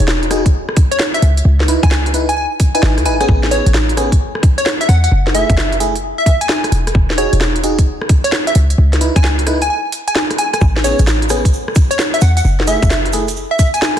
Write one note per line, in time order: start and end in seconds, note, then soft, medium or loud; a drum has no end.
0.00 0.63 E1 loud
0.08 snare loud
0.23 closed hi-hat soft
0.31 0.45 D#4 medium
0.31 0.45 F#4 medium
0.31 0.45 G#4 medium
0.31 cross-stick medium
0.31 open hi-hat loud
0.46 kick medium
0.46 closed hi-hat medium
0.69 cross-stick medium
0.77 kick loud
0.77 open hi-hat loud
0.91 1.01 C#5 medium
0.91 closed hi-hat medium
1.00 snare loud
1.14 1.21 E5 medium
1.14 closed hi-hat medium
1.22 1.42 C#2 medium
1.22 open hi-hat loud
1.37 closed hi-hat medium
1.45 1.77 C#2 loud
1.60 snare medium
1.68 1.87 D#4 medium
1.68 1.87 E4 medium
1.68 1.87 B4 medium
1.68 open hi-hat loud
1.83 2.46 C#2 loud
1.83 1.93 G#5 medium
1.83 kick loud
1.83 closed hi-hat medium
1.91 snare loud
2.06 closed hi-hat soft
2.14 2.28 D#4 medium
2.14 2.28 E4 medium
2.14 2.28 B4 medium
2.14 open hi-hat loud
2.29 2.34 G#5 medium
2.29 open hi-hat medium
2.37 2.46 G#5 medium
2.60 kick medium
2.60 open hi-hat loud
2.75 3.04 D#4 medium
2.75 3.04 E4 medium
2.75 3.04 B4 medium
2.75 2.84 G#5 medium
2.75 closed hi-hat medium
2.83 2.99 G#1 loud
2.83 snare loud
2.98 3.07 E2 medium
2.98 cross-stick medium
2.98 closed hi-hat medium
3.05 3.25 G#1 medium
3.05 3.17 D#4 medium
3.05 3.17 E4 medium
3.05 3.17 B4 loud
3.05 3.15 G#5 medium
3.05 open hi-hat loud
3.20 3.49 B3 medium
3.20 3.49 C#4 medium
3.20 3.49 G#4 loud
3.20 3.26 G#5 medium
3.20 cross-stick medium
3.20 closed hi-hat medium
3.29 3.61 A1 loud
3.29 kick loud
3.43 snare medium
3.51 3.70 B3 medium
3.51 3.70 C#4 medium
3.51 3.70 G#4 medium
3.51 3.67 C#5 loud
3.51 open hi-hat loud
3.66 4.29 A1 loud
3.66 closed hi-hat medium
3.74 snare loud
3.89 closed hi-hat soft
3.97 4.11 B3 medium
3.97 4.11 C#4 medium
3.97 4.11 G#4 medium
3.97 cross-stick medium
3.97 open hi-hat loud
4.12 kick medium
4.12 closed hi-hat medium
4.35 cross-stick medium
4.43 kick loud
4.43 open hi-hat loud
4.58 4.67 C#5 medium
4.58 closed hi-hat medium
4.66 snare loud
4.81 4.87 E5 medium
4.81 closed hi-hat medium
4.89 5.08 E2 medium
4.89 4.98 F#5 medium
4.89 open hi-hat loud
5.04 5.09 F#5 medium
5.04 closed hi-hat medium
5.12 5.44 F#1 loud
5.27 snare medium
5.34 5.53 A3 medium
5.34 5.53 E4 medium
5.34 5.53 G#4 medium
5.34 5.80 E5 loud
5.34 open hi-hat loud
5.50 6.13 F#1 loud
5.50 kick loud
5.50 closed hi-hat medium
5.57 snare loud
5.72 closed hi-hat soft
5.80 5.94 A3 medium
5.80 5.94 E4 medium
5.80 5.94 G#4 medium
5.80 open hi-hat loud
5.96 open hi-hat medium
6.18 6.23 E5 medium
6.26 6.36 E5 medium
6.26 kick medium
6.26 open hi-hat loud
6.41 6.72 G#5 medium
6.41 closed hi-hat medium
6.49 snare loud
6.64 cross-stick medium
6.64 closed hi-hat medium
6.72 6.91 E1 medium
6.72 open hi-hat loud
6.87 cross-stick medium
6.87 closed hi-hat medium
6.95 7.27 E1 loud
6.95 kick loud
7.10 snare medium
7.18 7.36 D#4 medium
7.18 7.37 F#4 medium
7.18 7.36 G#4 medium
7.18 7.34 C#5 medium
7.18 open hi-hat loud
7.33 7.96 E1 loud
7.33 closed hi-hat medium
7.41 snare loud
7.56 closed hi-hat soft
7.64 7.77 D#4 medium
7.64 7.77 F#4 medium
7.64 7.77 G#4 medium
7.64 open hi-hat loud
7.79 kick medium
7.79 closed hi-hat medium
8.02 cross-stick medium
8.09 kick loud
8.09 open hi-hat loud
8.24 8.34 C#5 medium
8.24 closed hi-hat medium
8.32 snare loud
8.47 8.54 E5 medium
8.47 closed hi-hat medium
8.55 8.74 C#2 medium
8.55 open hi-hat loud
8.70 closed hi-hat medium
8.78 9.10 C#2 loud
8.93 snare medium
8.93 closed hi-hat soft
9.01 9.20 D#4 medium
9.01 9.20 E4 medium
9.01 9.20 B4 medium
9.01 open hi-hat loud
9.16 9.70 C#2 loud
9.16 9.25 G#5 medium
9.16 kick loud
9.16 closed hi-hat medium
9.24 snare loud
9.39 closed hi-hat soft
9.47 9.61 D#4 medium
9.47 9.61 E4 medium
9.47 9.61 B4 medium
9.47 cross-stick medium
9.47 open hi-hat loud
9.62 9.67 G#5 medium
9.62 open hi-hat medium
9.70 9.79 G#5 medium
9.92 open hi-hat loud
10.08 10.17 G#5 medium
10.08 closed hi-hat medium
10.16 snare loud
10.31 cross-stick medium
10.31 closed hi-hat medium
10.38 10.48 G#5 medium
10.38 open hi-hat loud
10.53 10.58 G#5 medium
10.53 cross-stick medium
10.53 closed hi-hat medium
10.61 10.93 A1 loud
10.61 kick loud
10.61 shaker soft
10.77 snare medium
10.84 11.03 B3 medium
10.84 11.03 C#4 medium
10.84 11.03 G#4 medium
10.84 11.00 C#5 medium
10.84 open hi-hat loud
10.84 shaker loud
10.99 11.62 A1 loud
10.99 closed hi-hat medium
10.99 shaker medium
11.07 snare loud
11.07 shaker soft
11.22 closed hi-hat soft
11.29 11.44 B3 medium
11.29 11.44 C#4 medium
11.29 11.44 G#4 medium
11.29 cross-stick medium
11.29 open hi-hat loud
11.29 shaker medium
11.45 kick medium
11.45 closed hi-hat medium
11.45 shaker medium
11.53 shaker soft
11.68 cross-stick medium
11.75 kick loud
11.75 open hi-hat loud
11.75 shaker loud
11.91 12.00 C#5 medium
11.91 closed hi-hat medium
11.91 shaker medium
11.99 snare loud
11.99 shaker soft
12.14 12.20 E5 medium
12.14 closed hi-hat medium
12.21 12.41 E2 medium
12.21 12.31 F#5 medium
12.21 open hi-hat loud
12.21 shaker loud
12.37 12.42 F#5 medium
12.37 closed hi-hat medium
12.37 shaker medium
12.44 12.77 F#1 loud
12.44 shaker soft
12.60 snare medium
12.67 12.86 A3 medium
12.67 12.86 E4 medium
12.67 12.86 G#4 medium
12.67 13.13 E5 loud
12.67 open hi-hat loud
12.67 shaker medium
12.82 13.45 F#1 loud
12.82 kick loud
12.82 closed hi-hat medium
12.82 shaker medium
12.90 snare loud
12.90 shaker soft
13.06 closed hi-hat soft
13.13 13.27 A3 medium
13.13 13.27 E4 medium
13.13 13.27 G#4 medium
13.13 open hi-hat loud
13.13 shaker medium
13.28 open hi-hat medium
13.28 shaker medium
13.37 shaker soft
13.51 13.56 E5 medium
13.59 13.69 E5 medium
13.59 kick medium
13.59 open hi-hat loud
13.59 shaker medium
13.74 14.00 G#5 medium
13.74 closed hi-hat medium
13.74 shaker medium
13.82 snare loud
13.82 shaker soft